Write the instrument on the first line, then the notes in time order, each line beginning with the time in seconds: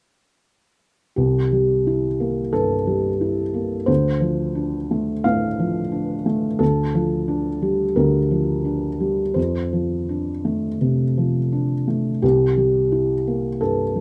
felt piano
1.16 C2 G4
1.52 G3
1.87 E4
2.20 A#3
2.53 G2 A4
2.87 G3
3.21 E4
3.54 A#3
3.86 D2 C5
4.21 F3
4.55 D4
4.91 A3
5.24 A2 F5
5.59 F3
5.92 D4
6.26 A3
6.59 D2 A4
6.94 F3
7.28 D4
7.62 G3
7.96 D2 A#4
8.31 F3
8.65 D4
9.00 G3
9.34 F2 C5
9.73 F3
10.09 D4
10.45 A3
10.81 C3
11.18 F3
11.52 D4
11.88 A3
12.22 C2 G4
12.57 G3
12.92 E4
13.27 A#3
13.61 G2 A4
13.96 G3